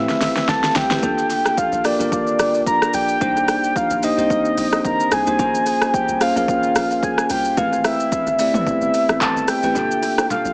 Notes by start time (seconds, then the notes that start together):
Already playing: A3 C4 E4 G4 B4 E5
0.09 snare, shaker
0.21 A1, snare, open hi-hat, shaker
0.36 snare, shaker
0.48 C2 A5, kick, snare, shaker
0.64 snare, shaker
0.75 C2 G5, snare, open hi-hat, shaker
0.90 A1 A3 C4 E4 G4 B4, snare, shaker
1.02 G1 A#3 D4 F4 G4 A4, kick, shaker
1.19 shaker
1.30 open hi-hat, shaker
1.46 cross-stick, shaker
1.58 F5, kick, shaker
1.72 A#1, shaker
1.84 A#3 D4 F4 G4 A#4 D5, cross-stick, open hi-hat, shaker
1.99 G1 A#3 D4 F4 G4 A#4 D5, shaker
2.12 kick, shaker
2.27 shaker
2.39 G1, cross-stick, open hi-hat, shaker
2.54 shaker
2.67 A#5, kick, shaker
2.82 cross-stick, shaker
2.94 A#1 G5, open hi-hat, shaker
3.09 shaker
3.20 C2 A#3 D4 D#4 G4 C5, kick, shaker
3.37 shaker
3.48 cross-stick, open hi-hat, shaker
3.64 shaker
3.76 F5, kick, shaker
3.91 A#1, shaker
4.02 A#3 D4 D#4 G4 C5 D#5, open hi-hat, shaker
4.17 C2 A#3 C4 D#4 G4 C5 D#5, shaker
4.30 kick, shaker
4.45 shaker
4.58 A#1, open hi-hat, shaker
4.72 cross-stick, shaker
4.85 G1 A#5, kick, shaker
5.00 shaker
5.12 C2 G#5, cross-stick, open hi-hat, shaker
5.26 C2 A#3 D4 D#4 G4 C5, shaker
5.38 A#1 A#3 C#4 F4 G#4 C5, kick, shaker
5.55 shaker
5.66 open hi-hat, shaker
5.82 cross-stick, shaker
5.94 G5, kick, shaker
6.09 C2, shaker
6.20 A#3 C#4 F4 G#4 C5 F5, cross-stick, open hi-hat, shaker
6.35 A#1 A#3 C#4 F4 G#4 A#4 F5, shaker
6.48 kick, shaker
6.63 shaker
6.76 A#1, cross-stick, open hi-hat, shaker
6.91 shaker
7.03 G#5, kick, shaker
7.18 cross-stick, shaker
7.30 C2 G5, open hi-hat, shaker
7.45 shaker
7.57 A1 A3 C4 E4 G4 B4 F5, kick, shaker
7.73 shaker
7.84 E5, cross-stick, open hi-hat, shaker
8.00 shaker
8.12 kick, shaker
8.27 G1, shaker
8.39 A3 C4 E4 G4 D5 E5, open hi-hat, shaker
8.54 A#1 A3 B3 E4 G4 B4, mid tom, shaker
8.61 C4
8.67 A1, kick, shaker
8.81 G1, shaker
8.94 open hi-hat, shaker
9.09 A1, cross-stick, shaker
9.21 A1 A5, kick, clap, shaker
9.36 G1, shaker
9.48 G5, cross-stick, open hi-hat, shaker
9.63 A1 A3 C4 E4 G4 B4, shaker
9.75 G1 A#3 D4 F4 G4 A4, low conga, shaker
9.91 shaker
10.02 open hi-hat, low bongo, shaker
10.18 cross-stick, low bongo, shaker
10.30 F5, high bongo, low conga, shaker
10.45 A#1, shaker